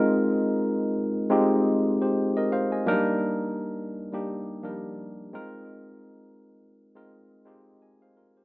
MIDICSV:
0, 0, Header, 1, 2, 480
1, 0, Start_track
1, 0, Tempo, 705882
1, 29, Time_signature, 4, 2, 24, 8
1, 5743, End_track
2, 0, Start_track
2, 0, Title_t, "Tine electric piano"
2, 0, Program_c, 0, 4
2, 0, Control_c, 0, 64, 127
2, 0, Note_on_c, 0, 56, 102
2, 0, Note_on_c, 0, 60, 82
2, 0, Note_on_c, 0, 63, 83
2, 0, Note_on_c, 0, 65, 93
2, 0, Note_on_c, 0, 70, 110
2, 605, Note_off_c, 0, 56, 0
2, 607, Note_off_c, 0, 60, 0
2, 608, Note_off_c, 0, 63, 0
2, 610, Note_off_c, 0, 65, 0
2, 612, Note_off_c, 0, 70, 0
2, 883, Note_on_c, 0, 56, 92
2, 886, Note_on_c, 0, 60, 85
2, 890, Note_on_c, 0, 63, 85
2, 894, Note_on_c, 0, 65, 73
2, 897, Note_on_c, 0, 67, 99
2, 1178, Note_off_c, 0, 56, 0
2, 1180, Note_off_c, 0, 60, 0
2, 1181, Note_off_c, 0, 63, 0
2, 1183, Note_off_c, 0, 65, 0
2, 1185, Note_off_c, 0, 67, 0
2, 1371, Note_on_c, 0, 72, 62
2, 1374, Note_on_c, 0, 67, 57
2, 1597, Note_off_c, 0, 72, 0
2, 1599, Note_off_c, 0, 67, 0
2, 1611, Note_on_c, 0, 75, 79
2, 1616, Note_on_c, 0, 70, 60
2, 1706, Note_off_c, 0, 75, 0
2, 1709, Note_off_c, 0, 70, 0
2, 1716, Note_on_c, 0, 77, 75
2, 1720, Note_on_c, 0, 72, 60
2, 1843, Note_off_c, 0, 77, 0
2, 1845, Note_off_c, 0, 72, 0
2, 1850, Note_on_c, 0, 80, 60
2, 1853, Note_on_c, 0, 75, 58
2, 1947, Note_on_c, 0, 54, 103
2, 1950, Note_on_c, 0, 58, 112
2, 1955, Note_on_c, 0, 62, 102
2, 1958, Note_on_c, 0, 63, 122
2, 1960, Control_c, 0, 64, 0
2, 1960, Note_on_c, 0, 70, 127
2, 1992, Note_on_c, 0, 55, 127
2, 1999, Note_off_c, 0, 54, 0
2, 2077, Note_off_c, 0, 80, 0
2, 2078, Note_off_c, 0, 75, 0
2, 2097, Control_c, 0, 64, 127
2, 2657, Note_off_c, 0, 58, 0
2, 2660, Note_off_c, 0, 62, 0
2, 2661, Note_off_c, 0, 63, 0
2, 2662, Note_off_c, 0, 70, 0
2, 2678, Note_off_c, 0, 55, 0
2, 2803, Note_on_c, 0, 55, 88
2, 2808, Note_on_c, 0, 58, 76
2, 2811, Note_on_c, 0, 62, 70
2, 2813, Note_on_c, 0, 63, 78
2, 2817, Note_on_c, 0, 67, 100
2, 3098, Note_off_c, 0, 55, 0
2, 3101, Note_off_c, 0, 58, 0
2, 3102, Note_off_c, 0, 62, 0
2, 3103, Note_off_c, 0, 63, 0
2, 3105, Note_off_c, 0, 67, 0
2, 3146, Note_on_c, 0, 53, 67
2, 3150, Note_on_c, 0, 58, 82
2, 3153, Note_on_c, 0, 62, 78
2, 3158, Note_on_c, 0, 63, 70
2, 3160, Note_on_c, 0, 70, 83
2, 3191, Note_on_c, 0, 55, 89
2, 3198, Note_off_c, 0, 53, 0
2, 3623, Note_off_c, 0, 63, 0
2, 3625, Note_on_c, 0, 56, 93
2, 3627, Note_on_c, 0, 60, 91
2, 3630, Note_off_c, 0, 58, 0
2, 3631, Note_off_c, 0, 62, 0
2, 3631, Note_on_c, 0, 63, 86
2, 3632, Note_off_c, 0, 70, 0
2, 3636, Note_on_c, 0, 65, 91
2, 3639, Control_c, 0, 64, 0
2, 3640, Note_on_c, 0, 70, 114
2, 3650, Note_off_c, 0, 55, 0
2, 3741, Control_c, 0, 64, 127
2, 4446, Note_off_c, 0, 56, 0
2, 4447, Note_off_c, 0, 60, 0
2, 4449, Note_off_c, 0, 63, 0
2, 4451, Note_off_c, 0, 65, 0
2, 4453, Note_off_c, 0, 70, 0
2, 4727, Note_on_c, 0, 56, 86
2, 4729, Note_on_c, 0, 60, 72
2, 4732, Note_on_c, 0, 63, 77
2, 4735, Note_on_c, 0, 65, 75
2, 4739, Note_on_c, 0, 70, 96
2, 5020, Note_off_c, 0, 56, 0
2, 5021, Note_off_c, 0, 60, 0
2, 5023, Note_off_c, 0, 63, 0
2, 5024, Note_off_c, 0, 65, 0
2, 5026, Note_off_c, 0, 70, 0
2, 5068, Note_on_c, 0, 56, 83
2, 5071, Note_on_c, 0, 60, 73
2, 5075, Note_on_c, 0, 63, 73
2, 5078, Note_on_c, 0, 65, 74
2, 5083, Note_on_c, 0, 67, 93
2, 5314, Note_off_c, 0, 65, 0
2, 5316, Note_off_c, 0, 67, 0
2, 5318, Note_on_c, 0, 80, 71
2, 5321, Note_on_c, 0, 75, 58
2, 5444, Note_off_c, 0, 80, 0
2, 5446, Note_off_c, 0, 75, 0
2, 5454, Note_on_c, 0, 77, 72
2, 5459, Note_on_c, 0, 72, 56
2, 5483, Note_off_c, 0, 56, 0
2, 5484, Note_off_c, 0, 60, 0
2, 5486, Note_off_c, 0, 63, 0
2, 5548, Note_off_c, 0, 77, 0
2, 5551, Note_off_c, 0, 72, 0
2, 5554, Note_on_c, 0, 70, 69
2, 5559, Note_on_c, 0, 65, 58
2, 5682, Note_off_c, 0, 70, 0
2, 5685, Note_off_c, 0, 65, 0
2, 5692, Note_on_c, 0, 72, 62
2, 5694, Note_on_c, 0, 67, 56
2, 5743, Note_off_c, 0, 67, 0
2, 5743, Note_off_c, 0, 72, 0
2, 5743, End_track
0, 0, End_of_file